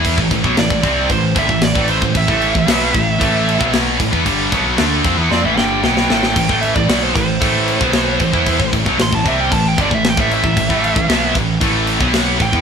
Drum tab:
CC |x-x-x-x-x-x-x-x-|x-x-x-x-x-x-x-x-|x-x-x-x---------|x-x-x-x-x-x-x-x-|
SD |----o-------o---|----o-------o---|----o---o-o-oooo|----o-------o---|
BD |oooo-oo-o-oo-o-o|oo-o--o-o--o--oo|o-o---o---------|oo-o--o-o--o--oo|

CC |x-x-x-x-x-x-x-x-|x-x-x-x-x-x-x-x-|
SD |----o-------o---|----o-------o---|
BD |oooo-oo-o-oo-o-o|oo-o--o-o--o--oo|